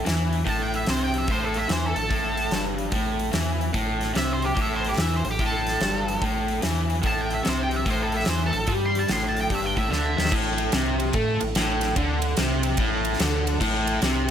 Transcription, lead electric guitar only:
0, 0, Header, 1, 2, 480
1, 0, Start_track
1, 0, Tempo, 410678
1, 541, Time_signature, 4, 2, 24, 8
1, 16722, End_track
2, 0, Start_track
2, 0, Title_t, "Lead electric guitar"
2, 0, Program_c, 0, 29
2, 571, Note_on_c, 0, 81, 103
2, 711, Note_off_c, 0, 81, 0
2, 721, Note_on_c, 0, 79, 88
2, 866, Note_off_c, 0, 79, 0
2, 883, Note_on_c, 0, 76, 93
2, 1027, Note_off_c, 0, 76, 0
2, 1049, Note_on_c, 0, 72, 93
2, 1190, Note_off_c, 0, 72, 0
2, 1213, Note_on_c, 0, 79, 92
2, 1378, Note_off_c, 0, 79, 0
2, 1378, Note_on_c, 0, 76, 89
2, 1515, Note_off_c, 0, 76, 0
2, 1537, Note_on_c, 0, 72, 81
2, 1674, Note_off_c, 0, 72, 0
2, 1702, Note_on_c, 0, 69, 94
2, 1837, Note_off_c, 0, 69, 0
2, 1838, Note_on_c, 0, 76, 80
2, 1984, Note_off_c, 0, 76, 0
2, 2013, Note_on_c, 0, 72, 77
2, 2152, Note_off_c, 0, 72, 0
2, 2178, Note_on_c, 0, 69, 112
2, 3090, Note_off_c, 0, 69, 0
2, 4876, Note_on_c, 0, 76, 90
2, 5023, Note_off_c, 0, 76, 0
2, 5061, Note_on_c, 0, 72, 80
2, 5196, Note_off_c, 0, 72, 0
2, 5199, Note_on_c, 0, 67, 88
2, 5344, Note_off_c, 0, 67, 0
2, 5394, Note_on_c, 0, 76, 86
2, 5523, Note_off_c, 0, 76, 0
2, 5569, Note_on_c, 0, 72, 77
2, 5690, Note_off_c, 0, 72, 0
2, 5715, Note_on_c, 0, 67, 78
2, 5843, Note_off_c, 0, 67, 0
2, 5859, Note_on_c, 0, 76, 79
2, 5995, Note_off_c, 0, 76, 0
2, 6035, Note_on_c, 0, 72, 82
2, 6163, Note_off_c, 0, 72, 0
2, 6204, Note_on_c, 0, 67, 79
2, 6328, Note_off_c, 0, 67, 0
2, 6382, Note_on_c, 0, 69, 85
2, 7273, Note_off_c, 0, 69, 0
2, 8261, Note_on_c, 0, 81, 94
2, 8396, Note_off_c, 0, 81, 0
2, 8426, Note_on_c, 0, 79, 89
2, 8559, Note_off_c, 0, 79, 0
2, 8582, Note_on_c, 0, 76, 90
2, 8717, Note_off_c, 0, 76, 0
2, 8753, Note_on_c, 0, 72, 98
2, 8882, Note_off_c, 0, 72, 0
2, 8918, Note_on_c, 0, 79, 87
2, 9072, Note_off_c, 0, 79, 0
2, 9072, Note_on_c, 0, 76, 78
2, 9202, Note_off_c, 0, 76, 0
2, 9239, Note_on_c, 0, 72, 80
2, 9366, Note_off_c, 0, 72, 0
2, 9379, Note_on_c, 0, 69, 84
2, 9516, Note_off_c, 0, 69, 0
2, 9544, Note_on_c, 0, 76, 81
2, 9678, Note_off_c, 0, 76, 0
2, 9693, Note_on_c, 0, 72, 81
2, 9833, Note_off_c, 0, 72, 0
2, 9891, Note_on_c, 0, 69, 106
2, 10168, Note_off_c, 0, 69, 0
2, 10355, Note_on_c, 0, 84, 94
2, 10484, Note_off_c, 0, 84, 0
2, 10513, Note_on_c, 0, 81, 86
2, 10643, Note_off_c, 0, 81, 0
2, 10660, Note_on_c, 0, 84, 95
2, 10797, Note_off_c, 0, 84, 0
2, 10853, Note_on_c, 0, 81, 88
2, 10973, Note_off_c, 0, 81, 0
2, 10991, Note_on_c, 0, 79, 89
2, 11122, Note_off_c, 0, 79, 0
2, 11157, Note_on_c, 0, 76, 91
2, 11287, Note_off_c, 0, 76, 0
2, 11287, Note_on_c, 0, 79, 102
2, 11430, Note_off_c, 0, 79, 0
2, 11435, Note_on_c, 0, 76, 100
2, 11575, Note_off_c, 0, 76, 0
2, 11589, Note_on_c, 0, 76, 84
2, 12051, Note_off_c, 0, 76, 0
2, 16722, End_track
0, 0, End_of_file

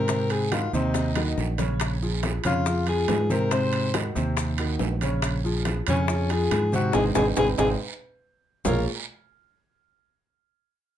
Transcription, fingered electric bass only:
0, 0, Header, 1, 2, 480
1, 0, Start_track
1, 0, Key_signature, -5, "minor"
1, 0, Tempo, 428266
1, 101, Time_signature, 4, 2, 24, 8
1, 12300, End_track
2, 0, Start_track
2, 0, Title_t, "Fingered electric bass"
2, 0, Program_c, 0, 33
2, 0, Note_on_c, 0, 44, 81
2, 749, Note_off_c, 0, 44, 0
2, 819, Note_on_c, 0, 39, 91
2, 1496, Note_off_c, 0, 39, 0
2, 1544, Note_on_c, 0, 34, 91
2, 2675, Note_off_c, 0, 34, 0
2, 2744, Note_on_c, 0, 41, 93
2, 3419, Note_off_c, 0, 41, 0
2, 3459, Note_on_c, 0, 44, 83
2, 4592, Note_off_c, 0, 44, 0
2, 4663, Note_on_c, 0, 39, 96
2, 5338, Note_off_c, 0, 39, 0
2, 5378, Note_on_c, 0, 34, 93
2, 6511, Note_off_c, 0, 34, 0
2, 6586, Note_on_c, 0, 41, 100
2, 7259, Note_off_c, 0, 41, 0
2, 7299, Note_on_c, 0, 44, 92
2, 7746, Note_off_c, 0, 44, 0
2, 7782, Note_on_c, 0, 32, 98
2, 7960, Note_off_c, 0, 32, 0
2, 8029, Note_on_c, 0, 32, 107
2, 8204, Note_off_c, 0, 32, 0
2, 8263, Note_on_c, 0, 32, 101
2, 8441, Note_off_c, 0, 32, 0
2, 8504, Note_on_c, 0, 32, 106
2, 8681, Note_off_c, 0, 32, 0
2, 9701, Note_on_c, 0, 34, 98
2, 9923, Note_off_c, 0, 34, 0
2, 12300, End_track
0, 0, End_of_file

